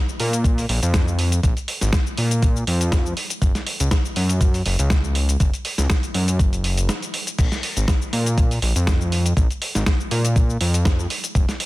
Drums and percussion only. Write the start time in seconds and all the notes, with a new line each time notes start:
0.09 cabasa
0.20 open hi-hat
0.33 closed hi-hat, cabasa
0.44 kick, closed hi-hat, cabasa
0.58 open hi-hat, cabasa
0.69 open hi-hat
0.83 closed hi-hat, cabasa
0.94 kick, snare, closed hi-hat, cabasa
1.08 cabasa
1.19 open hi-hat
1.32 closed hi-hat, cabasa
1.43 kick, closed hi-hat, cabasa
1.57 closed hi-hat, cabasa
1.68 open hi-hat
1.81 snare, closed hi-hat, cabasa
1.93 kick, snare, closed hi-hat, cabasa
2.07 cabasa
2.17 open hi-hat
2.31 closed hi-hat, cabasa
2.42 kick, closed hi-hat, cabasa
2.56 cabasa
2.67 open hi-hat
2.81 closed hi-hat, cabasa
2.92 kick, snare, closed hi-hat, cabasa
3.06 cabasa
3.17 open hi-hat
3.30 closed hi-hat, cabasa
3.42 kick, closed hi-hat, cabasa
3.55 snare, closed hi-hat, cabasa
3.67 open hi-hat
3.80 closed hi-hat, cabasa
3.91 kick, snare, closed hi-hat, cabasa
4.05 cabasa
4.16 open hi-hat
4.29 closed hi-hat, cabasa
4.41 kick, closed hi-hat, cabasa
4.54 open hi-hat, cabasa
4.66 open hi-hat
4.79 closed hi-hat, cabasa
4.90 kick, snare, closed hi-hat, cabasa
5.04 cabasa
5.15 open hi-hat
5.29 closed hi-hat, cabasa
5.40 kick, closed hi-hat, cabasa
5.54 closed hi-hat, cabasa
5.65 open hi-hat
5.78 snare, closed hi-hat, cabasa
5.90 kick, snare, closed hi-hat, cabasa
6.03 closed hi-hat, cabasa
6.14 open hi-hat
6.28 closed hi-hat, cabasa
6.39 kick, closed hi-hat, cabasa
6.53 closed hi-hat, cabasa
6.64 open hi-hat
6.77 closed hi-hat, cabasa
6.89 snare, closed hi-hat, cabasa
7.02 closed hi-hat, cabasa
7.14 open hi-hat
7.27 closed hi-hat, cabasa
7.39 kick, closed hi-hat, crash, cabasa
7.52 snare, closed hi-hat, cabasa
7.63 open hi-hat
7.77 closed hi-hat, cabasa
7.88 kick, snare, closed hi-hat, cabasa
8.02 cabasa
8.13 open hi-hat
8.26 closed hi-hat, cabasa
8.38 kick, closed hi-hat, cabasa
8.51 open hi-hat, cabasa
8.62 open hi-hat
8.76 closed hi-hat, cabasa
8.87 kick, snare, closed hi-hat, cabasa
9.01 cabasa
9.12 open hi-hat
9.26 closed hi-hat, cabasa
9.37 kick, closed hi-hat, cabasa
9.51 closed hi-hat, cabasa
9.62 open hi-hat
9.75 snare, closed hi-hat, cabasa
9.86 kick, snare, closed hi-hat, cabasa
10.00 cabasa
10.11 open hi-hat
10.25 closed hi-hat, cabasa
10.36 kick, closed hi-hat, cabasa
10.50 cabasa
10.61 open hi-hat
10.74 closed hi-hat, cabasa
10.85 kick, snare, closed hi-hat, cabasa
10.99 cabasa
11.10 open hi-hat
11.24 closed hi-hat, cabasa
11.35 kick, closed hi-hat, cabasa
11.49 snare, closed hi-hat, cabasa
11.60 open hi-hat